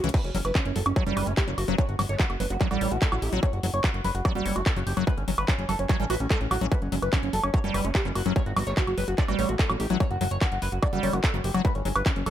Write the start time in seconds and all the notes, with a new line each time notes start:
0.04 C#2 E3 C#4, closed hi-hat
0.09 closed hi-hat
0.14 F#3 B4, kick, crash
0.24 F#1 C#4, closed hi-hat
0.35 F#1 F#3 C#4, open hi-hat
0.45 F#1 B4, closed hi-hat, high woodblock
0.55 E3 C#4, kick, clap, closed hi-hat
0.65 F#1 C#4, closed hi-hat
0.76 F#1 F#3 A4, open hi-hat
0.86 F#1 C#4, closed hi-hat, high woodblock
0.96 F#3 C#5, kick, closed hi-hat
1.06 F#1 G3 C#4, closed hi-hat
1.17 F#1 B4, open hi-hat, high woodblock
1.27 F#1 A3 C#4, closed hi-hat
1.37 G4, kick, clap, closed hi-hat
1.48 F#1 F#3 C#4, closed hi-hat
1.58 F#1 F#4, open hi-hat, high woodblock
1.68 F#1 F#3 B3 C#4, closed hi-hat
1.78 F#3 B3 C#5, kick, closed hi-hat
1.89 G1 F#4, closed hi-hat
1.99 G1 F#3 F#4, open hi-hat, high woodblock
2.09 G1 A3 C#5, closed hi-hat
2.19 E3 F#4, kick, clap, closed hi-hat
2.30 F#1 F#4, closed hi-hat, high woodblock
2.40 F#1 F#3 B4, open hi-hat
2.50 F#1 C#4 F#4, closed hi-hat
2.61 F#3 C#4 D5, kick, clap, closed hi-hat
2.71 A1 G3 F#4, closed hi-hat, high woodblock
2.81 A1 C#5, open hi-hat
2.91 A1 A3 F#4, closed hi-hat
3.02 A4, kick, clap, closed hi-hat
3.12 A1 F#3 E4 F#4, closed hi-hat, high woodblock
3.22 A1 G4, open hi-hat
3.33 A1 F#3 F#4, closed hi-hat
3.43 C#5, kick, closed hi-hat, high woodblock
3.53 F#1 F#4, closed hi-hat
3.63 F#1 F#3 F#4, open hi-hat
3.74 F#1 C#5, closed hi-hat
3.84 E3 F#4, kick, clap, closed hi-hat, high woodblock
3.94 F#1 F#4, closed hi-hat
4.04 F#1 F#3 B4, open hi-hat
4.15 F#1 F#4, closed hi-hat
4.25 F#3 D5, kick, closed hi-hat, high woodblock
4.35 F#1 G3 F#4, closed hi-hat
4.46 F#1 C#5, open hi-hat
4.56 F#1 A3 F#4, closed hi-hat, high woodblock
4.66 A4, kick, clap, closed hi-hat
4.76 F#1 F#3 F#4, closed hi-hat
4.87 F#1 G4, open hi-hat
4.97 F#1 F#3 F#4, closed hi-hat, high woodblock
5.07 F#3 B4, kick, closed hi-hat
5.17 G1 C#4, closed hi-hat
5.28 G1 F#3 C#4, open hi-hat
5.38 G1 B4, closed hi-hat, high woodblock
5.48 E3 C#4, kick, clap, closed hi-hat
5.59 F#1 C#4, closed hi-hat
5.69 F#1 F#3 A4, open hi-hat, high woodblock
5.79 F#1 C#4, closed hi-hat
5.89 F#3 C#5, kick, clap, closed hi-hat
6.00 A1 G3 C#4, closed hi-hat
6.10 A1 F#4 B4, open hi-hat, high woodblock
6.20 A1 C#4, closed hi-hat
6.30 G3 A4, kick, clap, closed hi-hat
6.41 A1 C#4, closed hi-hat
6.51 A1 F#3 F#4, open hi-hat, high woodblock
6.61 A1 F#3 C#4, closed hi-hat
6.72 F#3 B4, kick, closed hi-hat
6.82 F#1 C#4, closed hi-hat
6.92 F#1 F#3 C#4, open hi-hat
7.02 F#1 B4, closed hi-hat, high woodblock
7.13 E3 C#4, kick, clap, closed hi-hat
7.23 F#1 C#4, closed hi-hat
7.33 F#1 F#3 A4, open hi-hat
7.43 F#1 C#4, closed hi-hat, high woodblock
7.54 F#3 C#5, kick, closed hi-hat
7.64 F#1 G3 C#4, closed hi-hat
7.74 F#1 B4, open hi-hat, high woodblock
7.85 F#1 A3 C#4, closed hi-hat
7.95 G4, kick, clap, closed hi-hat
8.05 F#1 F#3 C#4, closed hi-hat
8.15 F#1 F#4, open hi-hat, high woodblock
8.26 F#1 F#3 B3 C#4, closed hi-hat
8.36 C#5, kick, closed hi-hat
8.46 G1 F#4, closed hi-hat
8.56 G1 F#3 F#4, open hi-hat, high woodblock
8.67 G1 A3 C#5, closed hi-hat
8.77 E3 F#4, kick, clap, closed hi-hat
8.87 F#1 F#4, closed hi-hat, high woodblock
8.98 F#1 F#3 B4, open hi-hat
9.08 F#1 F#4, closed hi-hat
9.18 F#3 D5, kick, clap, closed hi-hat
9.28 A1 G3 F#4, closed hi-hat, high woodblock
9.39 A1 C#5, open hi-hat
9.49 A1 A3 F#4, closed hi-hat
9.59 A4, kick, clap, closed hi-hat
9.70 A1 F#3 F#4, closed hi-hat, high woodblock
9.80 A1 G4, open hi-hat
9.90 A1 F#3 F#4, closed hi-hat
10.00 F#3 C#5, kick, closed hi-hat, high woodblock
10.11 F#1 F#4, closed hi-hat
10.21 F#1 F#3 F#4, open hi-hat
10.31 F#1 C#5, closed hi-hat
10.41 E3 F#4, kick, clap, closed hi-hat, high woodblock
10.52 F#1 F#4, closed hi-hat
10.62 F#1 F#3 B4, open hi-hat
10.72 F#1 F#4, closed hi-hat
10.82 F#3 D5, kick, closed hi-hat, high woodblock
10.93 F#1 G3 F#4, closed hi-hat
11.03 F#1 C#5, open hi-hat
11.13 F#1 A3 F#4, closed hi-hat, high woodblock
11.24 A4, kick, clap, closed hi-hat
11.34 F#1 F#3 F#4, closed hi-hat
11.44 F#1 G4, open hi-hat
11.54 F#1 F#3 F#4, closed hi-hat, high woodblock
11.65 F#3 B4, kick, closed hi-hat
11.75 G1 C#4, closed hi-hat
11.85 G1 F#3 C#4, open hi-hat
11.96 G1 B4, closed hi-hat, high woodblock
12.06 E3 C#4, kick, clap, closed hi-hat
12.16 F#1 C#4, closed hi-hat
12.26 F#1 F#3 A4, open hi-hat, high woodblock